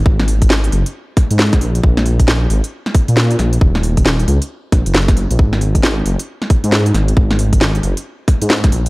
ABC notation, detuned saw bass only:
X:1
M:4/4
L:1/16
Q:"Swing 16ths" 1/4=135
K:D#m
V:1 name="Detuned saw bass" clef=bass
G,,,4 G,,,2 F,,, z4 G,,3 A,,,2 | A,,,4 A,,,2 G,,, z4 A,,3 A,,,2 | D,,,4 D,,,2 C,, z3 A,,, F,,,4 A,,, | G,,,4 G,,,2 F,,, z4 G,,3 G,,,2 |
G,,,4 G,,,2 F,,, z4 G,,3 A,,,2 |]